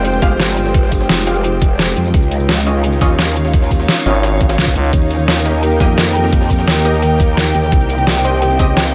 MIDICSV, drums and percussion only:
0, 0, Header, 1, 2, 480
1, 0, Start_track
1, 0, Key_signature, -4, "minor"
1, 0, Tempo, 348837
1, 1025, Time_signature, 4, 2, 24, 8
1, 12308, End_track
2, 0, Start_track
2, 0, Title_t, "Drums"
2, 64, Note_on_c, 9, 42, 96
2, 185, Note_off_c, 9, 42, 0
2, 185, Note_on_c, 9, 42, 47
2, 305, Note_off_c, 9, 42, 0
2, 305, Note_on_c, 9, 36, 106
2, 305, Note_on_c, 9, 38, 52
2, 305, Note_on_c, 9, 42, 68
2, 442, Note_off_c, 9, 36, 0
2, 443, Note_off_c, 9, 38, 0
2, 443, Note_off_c, 9, 42, 0
2, 545, Note_on_c, 9, 38, 127
2, 545, Note_on_c, 9, 42, 98
2, 664, Note_off_c, 9, 38, 0
2, 664, Note_on_c, 9, 38, 47
2, 682, Note_off_c, 9, 42, 0
2, 784, Note_on_c, 9, 42, 69
2, 785, Note_off_c, 9, 42, 0
2, 785, Note_on_c, 9, 42, 72
2, 802, Note_off_c, 9, 38, 0
2, 904, Note_on_c, 9, 38, 52
2, 922, Note_off_c, 9, 42, 0
2, 1025, Note_on_c, 9, 36, 127
2, 1025, Note_on_c, 9, 42, 100
2, 1042, Note_off_c, 9, 38, 0
2, 1145, Note_on_c, 9, 38, 44
2, 1162, Note_off_c, 9, 36, 0
2, 1162, Note_off_c, 9, 42, 0
2, 1264, Note_on_c, 9, 36, 65
2, 1265, Note_on_c, 9, 42, 70
2, 1265, Note_on_c, 9, 46, 84
2, 1282, Note_off_c, 9, 38, 0
2, 1385, Note_on_c, 9, 38, 48
2, 1402, Note_off_c, 9, 36, 0
2, 1402, Note_off_c, 9, 46, 0
2, 1403, Note_off_c, 9, 42, 0
2, 1504, Note_off_c, 9, 38, 0
2, 1504, Note_on_c, 9, 38, 120
2, 1504, Note_on_c, 9, 42, 94
2, 1505, Note_off_c, 9, 38, 0
2, 1505, Note_off_c, 9, 42, 0
2, 1505, Note_on_c, 9, 38, 127
2, 1505, Note_on_c, 9, 42, 105
2, 1625, Note_off_c, 9, 42, 0
2, 1625, Note_on_c, 9, 42, 44
2, 1642, Note_off_c, 9, 38, 0
2, 1744, Note_off_c, 9, 42, 0
2, 1744, Note_on_c, 9, 42, 71
2, 1745, Note_off_c, 9, 42, 0
2, 1745, Note_on_c, 9, 38, 49
2, 1745, Note_on_c, 9, 42, 63
2, 1864, Note_off_c, 9, 42, 0
2, 1864, Note_on_c, 9, 42, 46
2, 1882, Note_off_c, 9, 38, 0
2, 1985, Note_off_c, 9, 42, 0
2, 1985, Note_on_c, 9, 42, 96
2, 2123, Note_off_c, 9, 42, 0
2, 2225, Note_on_c, 9, 36, 102
2, 2225, Note_on_c, 9, 42, 73
2, 2362, Note_off_c, 9, 36, 0
2, 2363, Note_off_c, 9, 42, 0
2, 2465, Note_on_c, 9, 38, 125
2, 2465, Note_on_c, 9, 42, 89
2, 2603, Note_off_c, 9, 38, 0
2, 2603, Note_off_c, 9, 42, 0
2, 2705, Note_on_c, 9, 42, 71
2, 2825, Note_off_c, 9, 42, 0
2, 2825, Note_on_c, 9, 42, 46
2, 2945, Note_off_c, 9, 42, 0
2, 2945, Note_on_c, 9, 36, 127
2, 2945, Note_on_c, 9, 42, 90
2, 3065, Note_off_c, 9, 42, 0
2, 3065, Note_on_c, 9, 42, 42
2, 3083, Note_off_c, 9, 36, 0
2, 3185, Note_off_c, 9, 42, 0
2, 3185, Note_on_c, 9, 42, 66
2, 3305, Note_off_c, 9, 42, 0
2, 3305, Note_on_c, 9, 42, 45
2, 3425, Note_off_c, 9, 42, 0
2, 3425, Note_on_c, 9, 38, 127
2, 3425, Note_on_c, 9, 42, 92
2, 3563, Note_off_c, 9, 38, 0
2, 3563, Note_off_c, 9, 42, 0
2, 3665, Note_on_c, 9, 42, 66
2, 3803, Note_off_c, 9, 42, 0
2, 3905, Note_on_c, 9, 42, 89
2, 4025, Note_off_c, 9, 42, 0
2, 4025, Note_on_c, 9, 42, 45
2, 4144, Note_off_c, 9, 42, 0
2, 4144, Note_on_c, 9, 38, 53
2, 4144, Note_on_c, 9, 42, 74
2, 4145, Note_off_c, 9, 42, 0
2, 4145, Note_on_c, 9, 36, 107
2, 4145, Note_on_c, 9, 42, 67
2, 4282, Note_off_c, 9, 36, 0
2, 4282, Note_off_c, 9, 38, 0
2, 4283, Note_off_c, 9, 42, 0
2, 4384, Note_on_c, 9, 38, 122
2, 4384, Note_on_c, 9, 42, 95
2, 4385, Note_off_c, 9, 38, 0
2, 4385, Note_off_c, 9, 42, 0
2, 4385, Note_on_c, 9, 38, 127
2, 4385, Note_on_c, 9, 42, 102
2, 4505, Note_off_c, 9, 38, 0
2, 4505, Note_on_c, 9, 38, 49
2, 4523, Note_off_c, 9, 42, 0
2, 4625, Note_on_c, 9, 42, 68
2, 4642, Note_off_c, 9, 38, 0
2, 4744, Note_on_c, 9, 38, 55
2, 4762, Note_off_c, 9, 42, 0
2, 4865, Note_on_c, 9, 36, 125
2, 4865, Note_on_c, 9, 42, 92
2, 4882, Note_off_c, 9, 38, 0
2, 4985, Note_on_c, 9, 38, 41
2, 5002, Note_off_c, 9, 36, 0
2, 5003, Note_off_c, 9, 42, 0
2, 5104, Note_on_c, 9, 46, 83
2, 5105, Note_on_c, 9, 36, 63
2, 5105, Note_on_c, 9, 42, 66
2, 5122, Note_off_c, 9, 38, 0
2, 5224, Note_on_c, 9, 38, 47
2, 5242, Note_off_c, 9, 36, 0
2, 5242, Note_off_c, 9, 46, 0
2, 5243, Note_off_c, 9, 42, 0
2, 5344, Note_off_c, 9, 38, 0
2, 5344, Note_on_c, 9, 38, 117
2, 5344, Note_on_c, 9, 42, 96
2, 5345, Note_off_c, 9, 38, 0
2, 5345, Note_off_c, 9, 42, 0
2, 5345, Note_on_c, 9, 38, 127
2, 5345, Note_on_c, 9, 42, 95
2, 5465, Note_off_c, 9, 42, 0
2, 5465, Note_on_c, 9, 42, 46
2, 5483, Note_off_c, 9, 38, 0
2, 5584, Note_off_c, 9, 42, 0
2, 5584, Note_on_c, 9, 38, 50
2, 5584, Note_on_c, 9, 42, 66
2, 5585, Note_off_c, 9, 42, 0
2, 5585, Note_on_c, 9, 42, 65
2, 5704, Note_off_c, 9, 42, 0
2, 5704, Note_on_c, 9, 42, 46
2, 5722, Note_off_c, 9, 38, 0
2, 5824, Note_off_c, 9, 42, 0
2, 5824, Note_on_c, 9, 38, 102
2, 5824, Note_on_c, 9, 42, 80
2, 5826, Note_off_c, 9, 42, 0
2, 5826, Note_on_c, 9, 42, 86
2, 5962, Note_off_c, 9, 38, 0
2, 5963, Note_off_c, 9, 42, 0
2, 6064, Note_on_c, 9, 42, 64
2, 6065, Note_off_c, 9, 42, 0
2, 6065, Note_on_c, 9, 36, 105
2, 6065, Note_on_c, 9, 42, 66
2, 6184, Note_off_c, 9, 42, 0
2, 6184, Note_on_c, 9, 38, 111
2, 6184, Note_on_c, 9, 42, 78
2, 6202, Note_off_c, 9, 36, 0
2, 6305, Note_off_c, 9, 38, 0
2, 6305, Note_off_c, 9, 42, 0
2, 6305, Note_on_c, 9, 38, 127
2, 6305, Note_on_c, 9, 42, 94
2, 6425, Note_off_c, 9, 42, 0
2, 6425, Note_on_c, 9, 36, 61
2, 6425, Note_on_c, 9, 42, 61
2, 6443, Note_off_c, 9, 38, 0
2, 6544, Note_off_c, 9, 42, 0
2, 6544, Note_on_c, 9, 42, 66
2, 6546, Note_off_c, 9, 42, 0
2, 6546, Note_on_c, 9, 42, 65
2, 6563, Note_off_c, 9, 36, 0
2, 6665, Note_off_c, 9, 42, 0
2, 6665, Note_on_c, 9, 42, 44
2, 6785, Note_off_c, 9, 42, 0
2, 6785, Note_on_c, 9, 36, 122
2, 6785, Note_on_c, 9, 42, 96
2, 6786, Note_off_c, 9, 42, 0
2, 6786, Note_on_c, 9, 42, 91
2, 6905, Note_off_c, 9, 42, 0
2, 6905, Note_on_c, 9, 42, 44
2, 6923, Note_off_c, 9, 36, 0
2, 7025, Note_off_c, 9, 42, 0
2, 7025, Note_on_c, 9, 42, 61
2, 7145, Note_off_c, 9, 42, 0
2, 7145, Note_on_c, 9, 42, 45
2, 7264, Note_off_c, 9, 42, 0
2, 7264, Note_on_c, 9, 38, 121
2, 7264, Note_on_c, 9, 42, 92
2, 7266, Note_off_c, 9, 38, 0
2, 7266, Note_off_c, 9, 42, 0
2, 7266, Note_on_c, 9, 38, 119
2, 7266, Note_on_c, 9, 42, 93
2, 7403, Note_off_c, 9, 38, 0
2, 7403, Note_off_c, 9, 42, 0
2, 7505, Note_on_c, 9, 42, 66
2, 7643, Note_off_c, 9, 42, 0
2, 7744, Note_on_c, 9, 42, 89
2, 7745, Note_off_c, 9, 42, 0
2, 7745, Note_on_c, 9, 42, 88
2, 7865, Note_off_c, 9, 42, 0
2, 7865, Note_on_c, 9, 42, 47
2, 7985, Note_off_c, 9, 42, 0
2, 7985, Note_on_c, 9, 36, 100
2, 7985, Note_on_c, 9, 38, 53
2, 7985, Note_on_c, 9, 42, 65
2, 8122, Note_off_c, 9, 36, 0
2, 8122, Note_off_c, 9, 38, 0
2, 8123, Note_off_c, 9, 42, 0
2, 8225, Note_on_c, 9, 38, 126
2, 8225, Note_on_c, 9, 42, 89
2, 8346, Note_off_c, 9, 38, 0
2, 8346, Note_on_c, 9, 38, 48
2, 8363, Note_off_c, 9, 42, 0
2, 8465, Note_on_c, 9, 42, 62
2, 8466, Note_off_c, 9, 42, 0
2, 8466, Note_on_c, 9, 42, 66
2, 8483, Note_off_c, 9, 38, 0
2, 8586, Note_on_c, 9, 38, 52
2, 8604, Note_off_c, 9, 42, 0
2, 8705, Note_on_c, 9, 36, 122
2, 8705, Note_on_c, 9, 42, 91
2, 8724, Note_off_c, 9, 38, 0
2, 8825, Note_on_c, 9, 38, 41
2, 8843, Note_off_c, 9, 36, 0
2, 8843, Note_off_c, 9, 42, 0
2, 8945, Note_on_c, 9, 36, 59
2, 8945, Note_on_c, 9, 42, 66
2, 8945, Note_on_c, 9, 46, 79
2, 8963, Note_off_c, 9, 38, 0
2, 9065, Note_on_c, 9, 38, 52
2, 9083, Note_off_c, 9, 36, 0
2, 9083, Note_off_c, 9, 42, 0
2, 9083, Note_off_c, 9, 46, 0
2, 9185, Note_off_c, 9, 38, 0
2, 9185, Note_on_c, 9, 38, 120
2, 9185, Note_on_c, 9, 42, 92
2, 9186, Note_off_c, 9, 38, 0
2, 9186, Note_off_c, 9, 42, 0
2, 9186, Note_on_c, 9, 38, 123
2, 9186, Note_on_c, 9, 42, 89
2, 9305, Note_off_c, 9, 42, 0
2, 9305, Note_on_c, 9, 42, 46
2, 9323, Note_off_c, 9, 38, 0
2, 9425, Note_off_c, 9, 42, 0
2, 9425, Note_on_c, 9, 38, 48
2, 9425, Note_on_c, 9, 42, 65
2, 9545, Note_off_c, 9, 42, 0
2, 9545, Note_on_c, 9, 42, 44
2, 9562, Note_off_c, 9, 38, 0
2, 9665, Note_off_c, 9, 42, 0
2, 9665, Note_on_c, 9, 42, 90
2, 9803, Note_off_c, 9, 42, 0
2, 9905, Note_on_c, 9, 36, 101
2, 9905, Note_on_c, 9, 42, 71
2, 9906, Note_off_c, 9, 42, 0
2, 9906, Note_on_c, 9, 42, 62
2, 10043, Note_off_c, 9, 36, 0
2, 10043, Note_off_c, 9, 42, 0
2, 10145, Note_on_c, 9, 38, 124
2, 10145, Note_on_c, 9, 42, 93
2, 10283, Note_off_c, 9, 38, 0
2, 10283, Note_off_c, 9, 42, 0
2, 10385, Note_on_c, 9, 42, 66
2, 10386, Note_off_c, 9, 42, 0
2, 10386, Note_on_c, 9, 42, 65
2, 10505, Note_off_c, 9, 42, 0
2, 10505, Note_on_c, 9, 42, 48
2, 10625, Note_off_c, 9, 42, 0
2, 10625, Note_on_c, 9, 36, 124
2, 10625, Note_on_c, 9, 42, 92
2, 10626, Note_off_c, 9, 42, 0
2, 10626, Note_on_c, 9, 42, 94
2, 10745, Note_off_c, 9, 42, 0
2, 10745, Note_on_c, 9, 42, 43
2, 10763, Note_off_c, 9, 36, 0
2, 10865, Note_off_c, 9, 42, 0
2, 10865, Note_on_c, 9, 42, 65
2, 10985, Note_off_c, 9, 42, 0
2, 10985, Note_on_c, 9, 42, 45
2, 11105, Note_off_c, 9, 42, 0
2, 11105, Note_on_c, 9, 38, 117
2, 11105, Note_on_c, 9, 42, 95
2, 11242, Note_off_c, 9, 38, 0
2, 11242, Note_off_c, 9, 42, 0
2, 11345, Note_on_c, 9, 42, 70
2, 11483, Note_off_c, 9, 42, 0
2, 11585, Note_on_c, 9, 42, 88
2, 11705, Note_off_c, 9, 42, 0
2, 11705, Note_on_c, 9, 42, 47
2, 11825, Note_off_c, 9, 42, 0
2, 11825, Note_on_c, 9, 36, 99
2, 11825, Note_on_c, 9, 38, 56
2, 11825, Note_on_c, 9, 42, 70
2, 11963, Note_off_c, 9, 36, 0
2, 11963, Note_off_c, 9, 38, 0
2, 11963, Note_off_c, 9, 42, 0
2, 12065, Note_on_c, 9, 38, 123
2, 12065, Note_on_c, 9, 42, 92
2, 12185, Note_off_c, 9, 38, 0
2, 12185, Note_on_c, 9, 38, 48
2, 12203, Note_off_c, 9, 42, 0
2, 12308, Note_off_c, 9, 38, 0
2, 12308, End_track
0, 0, End_of_file